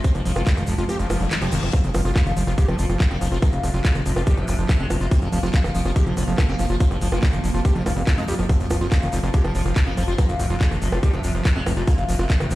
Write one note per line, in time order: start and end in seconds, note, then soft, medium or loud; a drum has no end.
0.00 1.72 F3 medium
0.00 1.75 G#3 medium
0.04 0.08 F3 medium
0.04 0.10 C4 medium
0.04 kick loud
0.04 closed hi-hat medium
0.04 shaker medium
0.15 0.21 F1 medium
0.15 0.21 F3 medium
0.15 closed hi-hat medium
0.15 high bongo soft
0.15 shaker soft
0.25 0.32 F1 medium
0.25 0.32 F3 medium
0.25 open hi-hat loud
0.25 shaker medium
0.35 0.42 F1 medium
0.35 0.42 F3 medium
0.35 0.42 F4 loud
0.35 closed hi-hat medium
0.35 high bongo medium
0.35 shaker soft
0.46 0.53 G3 medium
0.46 0.53 A#3 medium
0.46 kick loud
0.46 clap loud
0.46 closed hi-hat loud
0.46 shaker medium
0.57 0.63 F1 medium
0.57 0.63 D#3 loud
0.57 0.63 F3 medium
0.57 closed hi-hat medium
0.57 high bongo soft
0.57 shaker soft
0.67 0.74 F1 loud
0.67 0.74 F3 medium
0.67 open hi-hat medium
0.67 shaker medium
0.78 0.85 F1 medium
0.78 0.84 F3 medium
0.78 0.84 F4 medium
0.78 closed hi-hat medium
0.78 shaker soft
0.89 0.95 C4 medium
0.89 0.98 G4 loud
0.89 closed hi-hat loud
0.89 reverse cymbal medium
0.89 high bongo soft
0.89 shaker medium
0.99 1.06 F1 medium
0.99 1.05 F3 medium
0.99 1.09 F3 medium
0.99 closed hi-hat medium
0.99 shaker soft
1.10 1.16 F1 loud
1.10 1.16 F3 medium
1.10 1.22 F3 loud
1.10 open hi-hat loud
1.10 high bongo medium
1.10 shaker medium
1.21 1.27 F1 medium
1.21 1.24 G#3 loud
1.21 closed hi-hat medium
1.21 shaker soft
1.31 1.37 D#3 medium
1.31 1.37 F3 medium
1.31 clap loud
1.31 closed hi-hat loud
1.31 high bongo soft
1.31 shaker soft
1.41 1.48 F1 medium
1.41 1.48 F3 loud
1.41 1.48 G4 medium
1.41 closed hi-hat medium
1.41 shaker soft
1.52 1.58 F1 loud
1.52 1.61 D#3 loud
1.52 1.58 F3 medium
1.52 open hi-hat medium
1.52 shaker medium
1.63 1.69 F1 medium
1.63 1.69 F3 medium
1.63 1.66 F3 medium
1.63 closed hi-hat medium
1.63 high bongo soft
1.63 shaker soft
1.73 12.55 F3 medium
1.73 1.77 F3 medium
1.73 1.79 C4 loud
1.73 5.13 F4 medium
1.73 kick loud
1.73 closed hi-hat medium
1.73 impact medium
1.73 high bongo soft
1.73 shaker medium
1.84 1.90 F1 medium
1.84 1.90 F3 medium
1.84 closed hi-hat soft
1.84 shaker soft
1.94 2.01 F1 medium
1.94 2.01 F3 medium
1.94 open hi-hat loud
1.94 high bongo medium
1.94 shaker medium
2.05 2.11 F1 medium
2.05 2.11 F3 medium
2.05 2.11 F4 loud
2.05 closed hi-hat soft
2.05 shaker soft
2.16 2.22 G3 medium
2.16 2.22 A#3 medium
2.16 kick loud
2.16 clap loud
2.16 closed hi-hat loud
2.16 high bongo soft
2.16 shaker medium
2.26 2.32 F1 medium
2.26 2.32 D#3 loud
2.26 2.32 F3 medium
2.26 closed hi-hat soft
2.26 shaker soft
2.37 2.43 F1 loud
2.37 2.43 F3 medium
2.37 open hi-hat medium
2.37 shaker loud
2.47 2.54 F1 medium
2.47 2.53 F3 medium
2.47 2.53 F4 medium
2.47 closed hi-hat soft
2.47 high bongo soft
2.47 shaker soft
2.58 2.64 G#3 medium
2.58 2.67 G4 loud
2.58 kick loud
2.58 closed hi-hat loud
2.58 shaker medium
2.68 2.75 F1 medium
2.68 2.78 F3 medium
2.68 2.74 F3 medium
2.68 closed hi-hat soft
2.68 high bongo medium
2.78 2.85 F1 loud
2.78 2.85 F3 medium
2.78 open hi-hat loud
2.78 shaker medium
2.89 2.96 F1 medium
2.89 2.99 F3 loud
2.89 closed hi-hat soft
2.89 high bongo soft
2.89 shaker soft
3.00 3.06 F3 medium
3.00 kick loud
3.00 clap loud
3.00 closed hi-hat loud
3.00 shaker soft
3.11 3.17 F1 medium
3.11 3.17 A#3 loud
3.11 3.14 C4 medium
3.11 closed hi-hat soft
3.21 3.27 F1 loud
3.21 3.27 F3 loud
3.21 3.27 F3 medium
3.21 open hi-hat medium
3.21 high bongo soft
3.21 shaker loud
3.32 3.38 F1 medium
3.32 3.38 F3 medium
3.32 3.38 F4 loud
3.32 shaker soft
3.42 3.46 F3 medium
3.42 3.48 A#3 loud
3.42 kick loud
3.42 closed hi-hat loud
3.42 high bongo medium
3.42 shaker medium
3.52 3.59 F1 medium
3.52 3.59 C3 medium
3.52 closed hi-hat soft
3.52 shaker soft
3.63 3.70 F1 medium
3.63 3.70 C3 medium
3.63 3.70 F3 medium
3.63 open hi-hat loud
3.63 high bongo soft
3.63 shaker medium
3.74 3.80 F1 medium
3.74 3.80 C3 medium
3.74 3.80 F4 loud
3.74 closed hi-hat soft
3.74 shaker soft
3.85 3.91 G3 medium
3.85 3.91 G#3 medium
3.85 kick loud
3.85 clap loud
3.85 closed hi-hat medium
3.85 shaker medium
3.95 4.01 F1 medium
3.95 4.01 C3 medium
3.95 4.01 D#3 loud
3.95 closed hi-hat soft
3.95 high bongo soft
3.95 shaker soft
4.06 4.12 F1 loud
4.06 4.12 C3 medium
4.06 4.12 F3 medium
4.06 open hi-hat medium
4.06 shaker loud
4.16 4.23 F1 medium
4.16 4.22 C3 medium
4.16 4.22 F4 medium
4.16 high bongo medium
4.16 shaker soft
4.27 4.33 G3 loud
4.27 4.36 G4 loud
4.27 kick loud
4.27 closed hi-hat loud
4.27 shaker medium
4.37 4.44 F1 medium
4.37 4.44 C3 medium
4.37 4.47 F3 medium
4.37 closed hi-hat soft
4.37 high bongo soft
4.48 4.54 F1 loud
4.48 4.54 C3 medium
4.48 4.54 F3 medium
4.48 open hi-hat loud
4.48 zap medium
4.48 shaker loud
4.58 4.65 F1 medium
4.58 4.68 F3 loud
4.58 closed hi-hat soft
4.58 shaker soft
4.69 4.75 C3 medium
4.69 kick loud
4.69 clap loud
4.69 closed hi-hat loud
4.69 high bongo soft
4.69 shaker medium
4.80 4.86 F1 medium
4.80 4.86 G#3 medium
4.80 4.83 C4 medium
4.80 closed hi-hat soft
4.90 4.96 F1 loud
4.90 4.96 C3 medium
4.90 4.96 F3 loud
4.90 open hi-hat medium
4.90 high bongo medium
4.90 shaker medium
5.00 5.07 F1 medium
5.00 5.07 C3 medium
5.00 5.07 F4 loud
5.00 closed hi-hat soft
5.00 shaker soft
5.11 5.15 F3 medium
5.11 8.52 A#3 medium
5.11 5.17 C4 loud
5.11 kick loud
5.11 closed hi-hat medium
5.11 high bongo soft
5.11 shaker medium
5.21 5.28 F1 medium
5.21 5.28 F3 medium
5.21 closed hi-hat soft
5.21 shaker soft
5.32 5.39 F1 medium
5.32 5.39 F3 medium
5.32 open hi-hat loud
5.32 shaker medium
5.43 5.49 F1 medium
5.43 5.49 F3 medium
5.43 5.49 F4 loud
5.43 high bongo soft
5.43 shaker soft
5.53 5.60 G3 medium
5.53 5.60 A#3 medium
5.53 kick loud
5.53 clap loud
5.53 closed hi-hat medium
5.53 shaker medium
5.64 5.70 F1 medium
5.64 5.70 D#3 loud
5.64 5.70 F3 medium
5.64 closed hi-hat soft
5.64 high bongo medium
5.64 shaker soft
5.75 5.81 F1 loud
5.75 5.81 F3 medium
5.75 open hi-hat medium
5.75 shaker loud
5.85 5.92 F1 loud
5.85 5.91 F3 medium
5.85 5.91 F4 medium
5.85 closed hi-hat soft
5.85 high bongo soft
5.85 shaker soft
5.96 6.02 G#3 medium
5.96 6.05 G4 loud
5.96 kick loud
5.96 closed hi-hat medium
5.96 shaker medium
6.06 6.13 F1 medium
6.06 6.12 F3 medium
6.06 6.16 F3 medium
6.06 closed hi-hat soft
6.17 6.23 F1 loud
6.17 6.23 F3 medium
6.17 open hi-hat loud
6.17 high bongo soft
6.17 shaker loud
6.28 6.34 F1 medium
6.28 6.37 F3 loud
6.28 closed hi-hat soft
6.28 shaker soft
6.38 6.44 F3 medium
6.38 kick loud
6.38 clap loud
6.38 closed hi-hat medium
6.38 high bongo medium
6.38 shaker medium
6.49 6.55 F1 medium
6.49 6.55 A#3 medium
6.49 6.52 C4 medium
6.49 closed hi-hat soft
6.59 6.66 F1 loud
6.59 6.65 F3 medium
6.59 6.65 F3 loud
6.59 open hi-hat medium
6.59 high bongo soft
6.59 shaker loud
6.69 6.76 F1 medium
6.69 6.76 F3 medium
6.69 6.76 F4 loud
6.69 closed hi-hat soft
6.69 shaker soft
6.80 6.84 F3 medium
6.80 6.86 C4 loud
6.80 kick loud
6.80 closed hi-hat medium
6.80 shaker medium
6.91 6.97 F1 medium
6.91 6.97 F3 medium
6.91 closed hi-hat soft
6.91 high bongo soft
6.91 shaker soft
7.01 7.08 F1 medium
7.01 7.08 F3 medium
7.01 open hi-hat loud
7.01 shaker loud
7.12 7.18 F1 medium
7.12 7.18 F3 medium
7.12 7.18 F4 loud
7.12 closed hi-hat soft
7.12 high bongo medium
7.12 shaker soft
7.23 7.29 G3 medium
7.23 7.29 A#3 medium
7.23 kick loud
7.23 clap loud
7.23 closed hi-hat medium
7.23 shaker medium
7.33 7.39 F1 medium
7.33 7.39 D#3 loud
7.33 7.39 F3 medium
7.33 closed hi-hat soft
7.33 high bongo soft
7.33 shaker soft
7.44 7.50 F1 loud
7.44 7.50 F3 medium
7.44 open hi-hat medium
7.44 shaker loud
7.54 7.61 F1 loud
7.54 7.60 F3 medium
7.54 7.60 F4 medium
7.54 closed hi-hat soft
7.54 shaker soft
7.65 7.71 C4 medium
7.65 7.74 G4 loud
7.65 kick loud
7.65 closed hi-hat medium
7.65 high bongo soft
7.65 shaker medium
7.75 7.82 F1 medium
7.75 7.85 F3 medium
7.75 7.82 F3 medium
7.75 closed hi-hat soft
7.86 7.92 F1 loud
7.86 7.92 F3 medium
7.86 7.90 G3 loud
7.86 open hi-hat loud
7.86 high bongo medium
7.86 shaker medium
7.96 8.03 F1 medium
7.96 closed hi-hat soft
7.96 shaker soft
8.07 8.13 F3 medium
8.07 kick loud
8.07 clap loud
8.07 closed hi-hat medium
8.07 high bongo soft
8.07 shaker medium
8.18 8.24 F2 medium
8.18 8.24 G#3 loud
8.18 8.24 D#4 loud
8.18 closed hi-hat soft
8.18 shaker soft
8.28 8.35 F2 loud
8.28 8.34 F3 medium
8.28 8.34 G4 loud
8.28 open hi-hat medium
8.28 shaker medium
8.39 8.45 F1 medium
8.39 8.45 F3 loud
8.39 8.45 F3 medium
8.39 closed hi-hat soft
8.39 high bongo soft
8.39 shaker soft
8.49 8.53 F3 medium
8.49 8.55 C4 loud
8.49 11.90 F4 medium
8.49 kick loud
8.49 closed hi-hat medium
8.49 high bongo soft
8.49 shaker medium
8.60 8.66 F1 medium
8.60 8.66 F3 medium
8.60 closed hi-hat soft
8.60 shaker soft
8.70 8.77 F1 medium
8.70 8.77 F3 medium
8.70 open hi-hat loud
8.70 high bongo medium
8.70 shaker loud
8.81 8.87 F1 medium
8.81 8.87 F3 medium
8.81 8.87 F4 loud
8.81 closed hi-hat soft
8.81 shaker soft
8.92 8.98 G3 medium
8.92 8.98 A#3 medium
8.92 kick loud
8.92 clap loud
8.92 closed hi-hat medium
8.92 high bongo soft
8.92 shaker medium
9.02 9.08 F1 medium
9.02 9.08 D#3 loud
9.02 9.08 F3 medium
9.02 closed hi-hat soft
9.02 shaker soft
9.12 9.19 F1 loud
9.12 9.19 F3 medium
9.12 open hi-hat medium
9.12 shaker medium
9.23 9.30 F1 loud
9.23 9.29 F3 medium
9.23 9.29 F4 medium
9.23 closed hi-hat soft
9.23 high bongo soft
9.23 shaker soft
9.34 9.40 G#3 medium
9.34 9.43 G4 loud
9.34 kick loud
9.34 closed hi-hat medium
9.34 shaker medium
9.44 9.51 F1 medium
9.44 9.54 F3 medium
9.44 9.51 F3 medium
9.44 closed hi-hat soft
9.44 high bongo medium
9.55 9.61 F1 loud
9.55 9.64 F3 medium
9.55 9.61 F3 medium
9.55 open hi-hat loud
9.55 shaker medium
9.66 9.72 F1 medium
9.66 9.75 F3 loud
9.66 high bongo soft
9.66 shaker soft
9.76 9.82 F3 medium
9.76 kick loud
9.76 clap loud
9.76 closed hi-hat medium
9.76 shaker medium
9.87 9.93 F1 medium
9.87 9.93 A#3 medium
9.87 9.90 C4 medium
9.87 closed hi-hat soft
9.97 10.04 F1 loud
9.97 10.03 F3 loud
9.97 10.03 F3 medium
9.97 open hi-hat medium
9.97 high bongo soft
9.97 shaker loud
10.08 10.14 F1 medium
10.08 10.14 F3 medium
10.08 10.14 F4 loud
10.08 closed hi-hat soft
10.08 shaker soft
10.18 10.22 F3 medium
10.18 10.24 A#3 loud
10.18 kick loud
10.18 closed hi-hat medium
10.18 high bongo medium
10.18 shaker medium
10.29 10.35 F1 medium
10.29 10.35 C3 medium
10.29 closed hi-hat soft
10.29 shaker soft
10.39 10.46 F1 medium
10.39 10.46 C3 medium
10.39 10.46 F3 medium
10.39 open hi-hat loud
10.39 high bongo soft
10.39 shaker medium
10.50 10.56 F1 medium
10.50 10.56 C3 medium
10.50 10.56 F4 loud
10.50 closed hi-hat soft
10.50 shaker soft
10.61 10.67 G3 medium
10.61 10.67 G#3 medium
10.61 kick loud
10.61 clap loud
10.61 closed hi-hat medium
10.61 shaker medium
10.71 10.77 F1 medium
10.71 10.77 C3 medium
10.71 10.77 D#3 loud
10.71 closed hi-hat soft
10.71 high bongo soft
10.71 shaker soft
10.82 10.88 F1 loud
10.82 10.88 C3 medium
10.82 10.88 F3 medium
10.82 open hi-hat medium
10.82 shaker medium
10.92 10.99 F1 medium
10.92 10.98 C3 medium
10.92 10.98 F4 medium
10.92 closed hi-hat soft
10.92 high bongo medium
10.92 shaker soft
11.03 11.09 G3 medium
11.03 11.12 G4 loud
11.03 kick loud
11.03 closed hi-hat medium
11.03 shaker soft
11.13 11.20 F1 medium
11.13 11.20 C3 medium
11.13 11.23 F3 medium
11.13 closed hi-hat soft
11.13 high bongo soft
11.24 11.30 F1 loud
11.24 11.30 C3 medium
11.24 11.33 F3 medium
11.24 open hi-hat loud
11.24 shaker loud
11.35 11.41 F1 medium
11.35 11.44 F3 loud
11.35 closed hi-hat soft
11.35 shaker soft
11.45 11.51 C3 medium
11.45 kick loud
11.45 clap loud
11.45 closed hi-hat medium
11.45 high bongo soft
11.45 shaker medium
11.56 11.62 F1 medium
11.56 11.62 G#3 medium
11.56 11.59 C4 medium
11.56 closed hi-hat soft
11.66 11.73 F1 loud
11.66 11.72 C3 medium
11.66 11.72 F3 loud
11.66 open hi-hat medium
11.66 high bongo medium
11.66 shaker medium
11.77 11.83 F1 medium
11.77 11.83 C3 medium
11.77 11.83 F4 loud
11.77 closed hi-hat soft
11.77 shaker soft
11.87 11.91 F3 medium
11.87 11.93 A#3 loud
11.87 12.55 A#4 medium
11.87 kick loud
11.87 closed hi-hat loud
11.87 high bongo soft
11.87 shaker medium
11.98 12.04 F1 medium
11.98 12.04 C3 medium
11.98 closed hi-hat soft
11.98 shaker soft
12.09 12.15 F1 medium
12.09 12.15 C3 medium
12.09 12.15 F3 medium
12.09 open hi-hat loud
12.09 shaker medium
12.19 12.25 F1 medium
12.19 12.25 C3 medium
12.19 12.25 F4 loud
12.19 closed hi-hat soft
12.19 high bongo soft
12.29 12.36 G3 medium
12.29 12.36 G#3 medium
12.29 kick loud
12.29 clap loud
12.29 closed hi-hat loud
12.29 shaker soft
12.40 12.46 F1 loud
12.40 12.46 C3 medium
12.40 12.46 D#3 loud
12.40 closed hi-hat soft
12.40 high bongo medium
12.40 shaker soft
12.50 12.55 F1 loud
12.50 12.55 C3 medium
12.50 12.55 F3 medium
12.50 open hi-hat medium
12.50 shaker medium